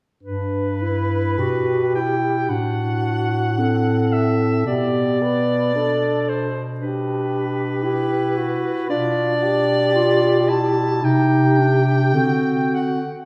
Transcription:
0.23 1.40 G2 soft
0.23 0.84 D4 soft
0.23 1.90 B4 soft
0.23 1.40 B4 soft
0.82 1.41 E4 soft
1.38 2.51 B2 soft
1.38 1.95 F#4 soft
1.38 2.49 G4 soft
1.95 2.51 E4 soft
1.95 2.51 G5 soft
2.50 4.65 A2 soft
2.50 3.60 D4 soft
2.50 3.61 F#4 soft
2.50 4.14 F#5 medium
3.58 4.66 C4 soft
3.58 4.67 A4 soft
4.13 4.66 E5 soft
4.65 8.58 B2 soft
4.65 5.73 B3 soft
4.65 5.24 G4 soft
4.65 6.30 D5 medium
5.22 5.78 B4 soft
5.75 6.53 D4 soft
5.75 6.55 A4 soft
6.29 6.62 C5 soft
6.80 7.85 D4 soft
6.80 7.79 G4 soft
6.80 8.85 B4 medium
7.83 8.89 E4 soft
7.83 8.39 G4 soft
8.37 8.92 F#4 soft
8.89 11.05 B2 soft
8.89 9.93 D4 soft
8.89 9.44 F4 soft
8.89 10.51 D5 medium
9.43 11.03 G4 soft
9.95 10.51 F4 soft
10.49 11.02 E4 soft
10.49 11.06 A5 medium
11.03 12.16 C3 soft
11.03 11.60 D#4 soft
11.03 12.13 G4 soft
11.03 12.74 G5 medium
11.58 12.14 D4 soft
12.14 13.25 D3 soft
12.14 13.02 C4 soft
12.14 13.02 F#4 soft
12.74 13.13 F#5 medium

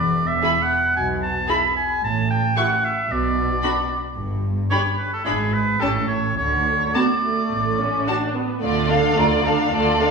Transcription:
0.00 0.35 E1 soft
0.00 0.35 E2 soft
0.00 0.29 D5 medium
0.27 0.64 E5 soft
0.42 0.50 E4 soft
0.42 0.51 G#4 soft
0.42 0.53 B5 soft
0.62 0.96 F#5 medium
0.96 1.41 B1 soft
0.96 1.40 B2 soft
0.96 1.08 G#5 medium
1.23 1.52 A5 medium
1.49 1.58 E4 soft
1.49 1.57 G#4 soft
1.49 1.58 B5 soft
1.49 1.76 B5 medium
1.76 2.03 G#5 medium
2.03 2.48 A1 soft
2.03 2.48 A2 soft
2.03 2.30 A5 medium
2.30 2.59 G5 medium
2.56 2.64 E4 soft
2.56 2.65 G4 soft
2.56 2.86 F#5 medium
2.56 2.65 C#6 soft
2.85 3.13 E5 soft
3.09 3.54 B1 soft
3.09 3.54 B2 soft
3.09 4.18 D5 medium
3.63 3.71 D4 soft
3.63 3.71 F#4 soft
3.63 3.71 B5 soft
4.16 4.62 G1 soft
4.16 4.62 G2 soft
4.70 4.79 D4 soft
4.70 4.80 G4 soft
4.70 4.83 C#5 medium
4.70 4.79 B5 soft
4.98 5.11 B4 soft
5.13 5.24 A4 soft
5.25 5.72 G#1 soft
5.25 5.72 G#2 soft
5.25 5.34 D4 soft
5.25 5.34 E4 soft
5.25 5.55 G#4 soft
5.25 5.33 B5 soft
5.53 5.82 B4 soft
5.80 6.28 A1 soft
5.80 6.28 A2 soft
5.80 5.89 C#4 soft
5.80 5.89 G4 soft
5.80 6.07 A4 soft
5.80 5.89 A5 soft
6.08 6.37 C#5 soft
6.37 6.85 D2 soft
6.37 6.85 D3 soft
6.37 6.96 C#5 medium
6.94 7.03 B3 soft
6.94 7.04 F#4 soft
6.94 8.35 D5 soft
6.94 7.03 A5 soft
7.22 7.78 A3 soft
7.51 7.98 A1 soft
7.51 7.98 A2 soft
7.79 8.07 C#4 soft
8.07 8.35 D4 soft
8.07 8.16 F#4 soft
8.07 8.16 A5 soft
8.35 8.63 B3 soft
8.62 9.12 D2 soft
8.62 9.12 D3 soft
8.62 8.88 A3 soft
8.62 8.89 F4 soft
8.62 8.89 D5 soft
8.89 9.18 D4 soft
8.89 9.19 A4 soft
8.89 9.18 F5 soft
9.16 9.68 D2 soft
9.16 9.67 D3 soft
9.16 9.45 A3 soft
9.16 9.46 F4 soft
9.16 9.46 D5 soft
9.16 9.25 A#5 medium
9.45 9.73 D4 soft
9.45 9.74 A4 soft
9.45 9.74 F5 soft
9.45 10.01 A5 soft
9.73 10.11 D2 soft
9.73 10.11 D3 soft
9.73 9.99 A3 soft
9.73 10.00 F4 soft
9.73 10.00 D5 soft
10.01 10.11 D4 soft
10.01 10.11 A4 soft
10.01 10.11 F5 soft
10.01 10.11 C6 soft

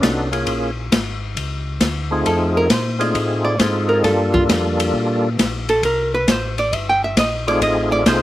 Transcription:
0.00 0.45 C2 medium
0.00 0.29 B3 medium
0.00 0.44 C#4 medium
0.00 0.29 D4 soft
0.00 0.29 D#4 medium
0.00 0.29 F#4 medium
0.00 0.29 A4 medium
0.00 0.44 C#5 medium
0.00 kick soft
0.00 snare medium
0.00 hi-hat pedal medium
0.00 ride medium
0.31 0.71 A#3 medium
0.31 0.71 C#4 medium
0.31 0.71 F4 medium
0.31 0.71 G#4 medium
0.31 ride soft
0.47 0.90 A#1 medium
0.47 kick soft
0.47 ride medium
0.92 1.35 G#1 medium
0.92 kick soft
0.92 snare medium
0.92 hi-hat pedal medium
0.92 ride medium
1.36 1.80 C#2 medium
1.36 kick soft
1.36 ride medium
1.81 2.24 D2 medium
1.81 kick soft
1.81 snare medium
1.81 hi-hat pedal medium
1.81 ride medium
2.11 2.67 A3 medium
2.11 2.68 C4 medium
2.11 2.68 D#4 medium
2.11 2.68 F4 medium
2.11 2.68 G#4 medium
2.26 2.69 F2 medium
2.26 2.56 A4 medium
2.26 kick soft
2.26 ride medium
2.57 2.73 A#4 medium
2.70 3.14 A#2 medium
2.70 3.01 C5 medium
2.70 kick soft
2.70 snare medium
2.70 hi-hat pedal medium
2.70 ride medium
2.99 3.56 A3 medium
2.99 3.56 C4 medium
2.99 3.56 D#4 medium
2.99 3.56 F4 medium
2.99 3.57 G#4 medium
2.99 3.17 D5 loud
2.99 ride soft
3.15 3.58 A2 medium
3.15 3.44 D#5 loud
3.15 kick soft
3.15 ride medium
3.45 3.61 D5 medium
3.59 4.03 G#2 medium
3.59 4.04 C4 medium
3.59 4.05 D#4 medium
3.59 4.03 F4 medium
3.59 4.05 G#4 medium
3.59 4.02 A4 medium
3.59 3.90 C5 medium
3.59 kick soft
3.59 snare medium
3.59 hi-hat pedal medium
3.59 ride medium
3.89 4.03 A#4 medium
4.03 4.48 G2 medium
4.03 5.29 G3 medium
4.03 5.29 A#3 medium
4.03 5.29 D4 medium
4.03 5.30 F4 medium
4.03 5.30 A4 medium
4.03 4.34 A4 medium
4.03 kick soft
4.03 snare soft
4.03 ride medium
4.34 4.43 F4 medium
4.34 kick medium
4.49 4.93 F2 medium
4.49 kick soft
4.49 snare medium
4.49 hi-hat pedal soft
4.49 ride medium
4.80 ride medium
4.94 5.37 A#2 medium
4.94 kick soft
5.39 5.82 A#1 medium
5.39 kick soft
5.39 snare medium
5.39 hi-hat pedal medium
5.39 ride medium
5.69 5.83 A4 medium
5.69 ride soft
5.83 6.26 C2 medium
5.83 6.14 A#4 medium
5.83 kick soft
5.83 ride medium
6.14 6.30 B4 loud
6.28 6.71 A1 medium
6.28 6.58 C5 medium
6.28 kick soft
6.28 snare medium
6.28 hi-hat pedal medium
6.28 ride medium
6.58 6.75 D5 medium
6.58 ride soft
6.73 7.16 G1 medium
6.73 6.88 E5 medium
6.73 kick soft
6.73 ride medium
6.89 7.03 G5 loud
7.04 7.18 E5 medium
7.17 7.61 A#1 medium
7.17 7.48 D#5 medium
7.17 kick soft
7.17 snare medium
7.17 hi-hat pedal soft
7.17 ride medium
7.47 8.04 A3 medium
7.47 8.04 C4 medium
7.47 8.04 D#4 medium
7.47 8.04 F4 medium
7.47 8.04 G#4 medium
7.47 7.62 D5 loud
7.47 ride soft
7.61 8.05 A1 medium
7.61 7.92 D#5 medium
7.61 kick soft
7.61 ride medium
7.92 8.06 D5 loud
8.06 8.22 C2 medium
8.06 8.22 A3 medium
8.06 8.22 C4 medium
8.06 8.22 D#4 medium
8.06 8.22 F4 medium
8.06 8.22 G#4 medium
8.06 8.22 C5 medium
8.06 kick soft
8.06 snare medium
8.06 hi-hat pedal medium
8.06 ride medium

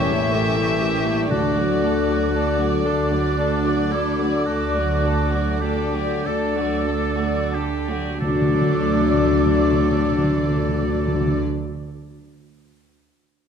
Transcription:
0.00 1.13 A1 medium
0.00 1.13 A2 medium
0.00 1.27 E3 medium
0.00 1.33 G4 medium
0.00 0.34 C#5 medium
0.00 1.32 E5 medium
0.00 1.30 C#6 soft
0.11 0.34 G3 soft
0.11 0.34 A#3 soft
0.11 0.33 E4 soft
0.11 0.33 A4 soft
0.32 0.57 A3 soft
0.32 0.57 C#4 soft
0.32 0.57 G4 soft
0.32 0.84 A4 soft
0.32 0.57 A#4 soft
0.57 0.81 G3 soft
0.57 0.81 A#3 soft
0.57 0.81 E4 soft
0.57 0.81 A4 soft
0.80 1.05 A3 soft
0.80 1.05 C#4 soft
0.80 1.04 G4 soft
0.80 1.30 G4 soft
0.80 1.04 A#4 soft
1.06 1.32 G3 soft
1.06 1.32 A#3 soft
1.06 1.32 E4 soft
1.06 1.29 A4 soft
1.28 2.66 D2 medium
1.28 7.52 D3 soft
1.28 2.81 D3 medium
1.28 2.66 D3 soft
1.28 1.56 A3 soft
1.28 1.56 D4 soft
1.28 7.15 F#4 soft
1.28 2.74 F#4 soft
1.28 1.55 A4 soft
1.28 7.67 D6 soft
1.33 7.51 D5 medium
1.57 1.83 F#3 soft
1.57 1.82 A3 soft
1.57 1.82 F#4 soft
1.57 1.82 D5 soft
1.83 2.07 A3 soft
1.83 2.08 D4 soft
1.83 2.09 A4 soft
2.08 2.33 F#3 soft
2.08 2.33 A3 soft
2.08 2.35 F#4 soft
2.08 2.34 D5 soft
2.34 2.57 A3 soft
2.34 2.57 D4 soft
2.34 2.58 A4 soft
2.59 2.85 F#3 soft
2.59 2.83 A3 soft
2.59 2.85 F#4 soft
2.59 2.85 D5 soft
2.84 4.26 D2 medium
2.84 4.27 D3 soft
2.84 3.11 A3 soft
2.84 3.93 D4 soft
2.84 3.11 D4 soft
2.84 3.11 A4 soft
3.12 3.38 F#3 soft
3.12 3.38 A3 soft
3.12 3.38 F#4 soft
3.12 3.38 D5 soft
3.39 3.63 A3 soft
3.39 3.63 D4 soft
3.39 3.63 A4 soft
3.65 3.92 F#3 soft
3.65 3.92 A3 soft
3.65 3.92 F#4 soft
3.65 3.92 D5 soft
3.91 4.20 A3 soft
3.91 4.20 D4 soft
3.91 4.47 E4 soft
3.91 4.18 A4 soft
4.19 4.47 F#3 soft
4.19 4.47 A3 soft
4.19 4.47 F#4 soft
4.19 4.46 D5 soft
4.46 6.02 D2 soft
4.46 6.02 D3 soft
4.46 4.74 A3 soft
4.46 4.74 D4 soft
4.46 5.63 F#4 soft
4.46 4.73 A4 soft
4.74 5.04 F#3 soft
4.74 5.04 A3 soft
4.74 5.03 F#4 soft
4.74 5.03 D5 soft
5.05 5.33 A3 soft
5.05 5.34 D4 soft
5.05 5.34 A4 soft
5.31 5.63 F#3 soft
5.31 5.63 A3 soft
5.31 5.62 F#4 soft
5.31 5.62 D5 soft
5.62 5.92 A3 soft
5.62 5.92 D4 soft
5.62 6.27 G4 soft
5.62 5.92 A4 soft
5.94 6.25 F#3 soft
5.94 6.24 A3 soft
5.94 6.24 F#4 soft
5.94 6.24 D5 soft
6.24 7.98 D2 soft
6.24 7.98 D3 soft
6.24 6.55 A3 soft
6.24 6.55 D4 soft
6.24 6.56 A4 soft
6.24 7.55 A4 medium
6.55 6.87 F#3 soft
6.55 6.87 A3 soft
6.55 6.87 F#4 soft
6.55 6.87 D5 soft
6.87 7.18 A3 soft
6.87 7.18 D4 soft
6.87 7.18 A4 soft
7.18 7.55 F#3 soft
7.18 7.55 A3 soft
7.18 7.53 F#4 soft
7.18 7.54 D5 soft
7.54 7.89 A3 soft
7.54 7.89 D4 soft
7.54 8.20 G4 soft
7.54 7.88 A4 soft
7.89 8.22 F#3 soft
7.89 8.22 A3 soft
7.89 8.22 F#4 soft
7.89 8.22 D5 soft
8.20 11.41 D2 medium
8.20 8.28 D3 medium
8.20 11.41 D3 soft
8.20 11.42 F#3 soft
8.20 11.43 A3 soft
8.20 11.41 D4 soft
8.20 11.42 D4 soft
8.20 11.42 F#4 soft
8.20 11.39 A4 soft
8.20 11.42 D5 medium
8.20 11.39 D6 soft
8.29 8.35 D3 medium
8.35 8.41 D3 medium
8.42 8.48 D3 medium
8.49 8.55 D3 medium
8.55 8.61 D3 soft
8.61 8.68 D3 medium
8.69 8.75 D3 medium
8.75 8.81 D3 medium
8.81 8.87 D3 soft
8.88 8.95 D3 medium
8.95 9.01 D3 medium
9.01 9.07 D3 medium
9.07 9.13 D3 medium
9.13 9.20 D3 medium
9.20 9.26 D3 medium
9.27 9.33 D3 medium
9.33 9.39 D3 medium
9.39 9.46 D3 medium
9.46 9.52 D3 medium
9.52 9.59 D3 soft
9.59 9.65 D3 medium
9.66 9.72 D3 medium
9.72 9.79 D3 soft
9.79 9.85 D3 medium
9.85 9.91 D3 medium
9.91 9.98 D3 medium
9.98 10.05 D3 medium
10.05 10.11 D3 medium
10.11 10.18 D3 soft
10.18 10.24 D3 medium
10.24 10.30 D3 medium
10.31 10.38 D3 medium
10.38 10.44 D3 soft
10.44 10.50 D3 medium
10.50 10.56 D3 soft
10.56 10.63 D3 medium
10.63 10.69 D3 medium
10.69 10.76 D3 soft
10.76 10.82 D3 medium
10.82 10.88 D3 soft
10.88 10.95 D3 medium
10.95 11.01 D3 medium
11.01 11.07 D3 medium
11.08 11.14 D3 medium
11.14 11.21 D3 medium
11.21 11.27 D3 medium
11.27 11.34 D3 medium
11.34 11.40 D3 medium

